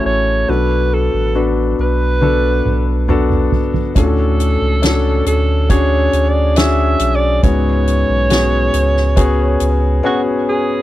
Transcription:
Already playing: A3 C#4 E4 F#4 G#4
0.05 A1 C#5
0.48 B1 B2 F#3 B3 D4 F#4 A4 B4
0.94 A4
1.14 A1
1.35 B3 D4 F#4 B4
1.79 B1 B4
2.21 B3 D4 F#4 A4, high tom
2.65 B1, mid tom
3.08 B3 D4 F#4 A4, mid tom
3.30 mid tom
3.52 floor tom
3.74 floor tom
3.95 D2 A2 C#4 D4 F4 A4, kick, closed hi-hat
4.03 F#4
4.40 closed hi-hat
4.62 C#2
4.82 C#4 D4 F#4 A4, snare, closed hi-hat
5.26 D2 A4, closed hi-hat
5.69 C#4 D4 F#4 G#4 C#5, kick, closed hi-hat
6.13 D2, closed hi-hat
6.29 D5
6.56 C#4 D4 F#4 G#4 E5, snare, closed hi-hat
6.99 B1, closed hi-hat
7.15 D5
7.43 C#2 G#2 B3 C#4 F#4 G#4 C#5, kick, closed hi-hat
7.87 closed hi-hat
8.09 B1
8.30 B3 C#4 F#4 G#4, snare, closed hi-hat
8.74 C#2, closed hi-hat
8.97 snare
9.16 B3 C#4 F#4 G#4, kick, closed hi-hat
9.60 C#2, closed hi-hat
10.03 B3 C#4 F#4 G#4
10.49 G#4

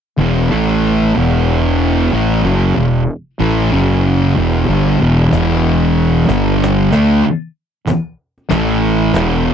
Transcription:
0.18 E1 E2 B2 E3
0.50 A1 A2 E3 A3
1.14 E1 E2 B2 E3
2.12 A1 A2 E3 A3
2.42 F#1 F#2 C#3 F#3
2.76 E1 E2 B2
3.40 A1 A2 E3 A3
3.71 F#1 F#2 C#3 F#3
4.36 E1 E2 B2 E3
4.68 G1 G2 D3 G3
5.01 E1 E2 B2 E3
5.32 E1 E2 B2 E3, cajon bass
5.83 cajon slap
6.28 G1 G2 D3 G3, cajon bass
6.64 cajon slap
6.92 D2 D3 A3 D4, cajon bass
7.87 muted fingered electric bass stroke, muted distorted electric guitar stroke, cajon bass
8.38 cajon slap
8.49 A1 A2 E3 A3, cajon bass
9.13 E1 E2 B2 E3, cajon bass, cajon slap

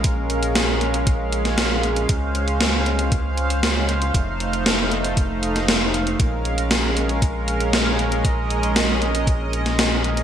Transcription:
Already playing: A#1 G#3 C#4 A#4 F5
0.04 kick, closed hi-hat
0.30 closed hi-hat
0.43 closed hi-hat
0.55 snare, closed hi-hat
0.81 closed hi-hat
0.94 closed hi-hat
1.07 kick, closed hi-hat
1.33 closed hi-hat
1.45 snare, closed hi-hat
1.58 snare, closed hi-hat
1.83 closed hi-hat
1.96 closed hi-hat
2.09 C#2 C5, kick, closed hi-hat
2.35 closed hi-hat
2.48 closed hi-hat
2.61 snare, closed hi-hat
2.86 closed hi-hat
2.99 closed hi-hat
3.12 kick, closed hi-hat
3.38 closed hi-hat
3.50 closed hi-hat
3.63 snare, closed hi-hat
3.89 closed hi-hat
4.02 closed hi-hat
4.14 F1 A3 D#4, kick, closed hi-hat
4.40 closed hi-hat
4.53 closed hi-hat
4.66 snare, closed hi-hat
4.92 closed hi-hat
5.04 closed hi-hat
5.17 kick, closed hi-hat
5.43 closed hi-hat
5.56 snare, closed hi-hat
5.68 snare, closed hi-hat
5.94 closed hi-hat
6.07 closed hi-hat
6.19 A#1 G#3 C#4 A#4, kick, closed hi-hat
6.45 closed hi-hat
6.58 closed hi-hat
6.71 snare, closed hi-hat
6.97 closed hi-hat
7.09 closed hi-hat
7.22 kick, closed hi-hat
7.48 closed hi-hat
7.60 closed hi-hat
7.73 snare, closed hi-hat
7.99 closed hi-hat
8.12 closed hi-hat
8.25 D#5, kick, closed hi-hat
8.50 closed hi-hat
8.63 closed hi-hat
8.76 snare, closed hi-hat
9.02 closed hi-hat
9.15 closed hi-hat
9.27 kick, closed hi-hat
9.53 closed hi-hat
9.66 snare, closed hi-hat
9.79 snare, closed hi-hat
10.04 closed hi-hat
10.17 closed hi-hat

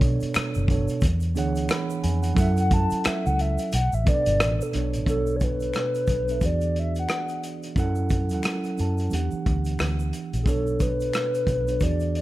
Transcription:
Already playing: B1 B2 B3 D4 A4 C#5
0.01 kick, closed hi-hat
0.20 muted fingered electric bass stroke, closed hi-hat, shaker
0.34 finger snap, muted fingered electric bass stroke, cross-stick, closed hi-hat, shaker
0.54 F#1, shaker
0.67 B2 B3 D4 A4, kick, closed hi-hat
0.71 C#5
0.88 closed hi-hat, shaker
1.01 E2, kick, closed hi-hat, shaker
1.20 closed hi-hat, shaker
1.35 D2 E3 B3 D4 G#4 C#5 F#5, closed hi-hat, shaker
1.55 closed hi-hat, shaker
1.69 B5, finger snap, cross-stick, closed hi-hat, shaker
1.90 shaker
2.03 F2 G#5, closed hi-hat
2.23 F#5, closed hi-hat, shaker
2.34 F#2 F#3 C#4 E4 A4 F#5, kick, closed hi-hat, shaker
2.39 E5
2.57 F#5, closed hi-hat, shaker
2.71 A5, kick, closed hi-hat
2.91 muted fingered electric bass stroke, closed hi-hat, shaker
3.04 E5, finger snap, muted fingered electric bass stroke, cross-stick, closed hi-hat, shaker
3.26 C#2 F#5, shaker
3.39 E5, closed hi-hat
3.58 closed hi-hat, shaker
3.72 B1 F#5, closed hi-hat, shaker
3.92 A1 E5, shaker
4.04 B2 B3 D4 A4 B4, kick, closed hi-hat, shaker
4.09 D5
4.15 D5
4.26 G1, closed hi-hat, shaker
4.40 A1, finger snap, cross-stick, closed hi-hat, shaker
4.61 A4, shaker
4.73 B1 B2 B3 D4 A4 C#5, cross-stick, closed hi-hat
4.93 A1, closed hi-hat, shaker
5.06 B1 B2 B3 D4 A4, kick, closed hi-hat, shaker
5.10 C#5
5.26 shaker
5.36 C#5
5.40 B4, kick, closed hi-hat, shaker
5.60 closed hi-hat, shaker
5.74 finger snap, cross-stick, closed hi-hat, shaker
5.95 closed hi-hat, shaker
6.07 B1, kick, closed hi-hat, shaker
6.27 B2 B3 D4 A4, closed hi-hat, shaker
6.31 E5
6.41 E2 E3 B3 D4 F#4 G#4, kick, closed hi-hat, shaker
6.45 D5
6.61 closed hi-hat, shaker
6.76 E5, closed hi-hat
6.95 closed hi-hat, shaker
6.99 F#5
7.09 finger snap, cross-stick, closed hi-hat, shaker
7.29 closed hi-hat, shaker
7.43 closed hi-hat, shaker
7.63 closed hi-hat, shaker
7.76 F#2 F#3 C#4 E4 A4 F#5, kick, closed hi-hat, shaker
7.95 shaker
8.09 kick, closed hi-hat, shaker
8.29 F#3 C#4 E4 A4, closed hi-hat, shaker
8.34 F#5
8.43 finger snap, cross-stick, closed hi-hat, shaker
8.64 closed hi-hat, shaker
8.77 F#2 F#3 C#4 E4 A4 A5, closed hi-hat, shaker
8.98 closed hi-hat, shaker
9.10 E2 E3 B3 D4 G4, closed hi-hat, shaker
9.14 F#5
9.31 muted fingered electric bass stroke, shaker
9.46 D2, kick, closed hi-hat
9.65 closed hi-hat, shaker
9.79 D2, finger snap, cross-stick, closed hi-hat, shaker
9.99 shaker
10.13 closed hi-hat, shaker
10.33 A#1, closed hi-hat, shaker
10.43 B1 B2 B3 G#4, kick
10.47 D4 A4 C#5, closed hi-hat, shaker
10.67 shaker
10.80 B4, kick, closed hi-hat, shaker
11.00 closed hi-hat, shaker
11.13 finger snap, cross-stick, closed hi-hat, shaker
11.35 closed hi-hat, shaker
11.47 B1, kick, closed hi-hat, shaker
11.67 B2 B3 D4 A4 C#5, closed hi-hat, shaker
11.80 E2 E3 B3 D4 F#4 G#4 D5, kick, closed hi-hat, shaker
11.84 D5
12.00 closed hi-hat, shaker
12.15 D5, closed hi-hat

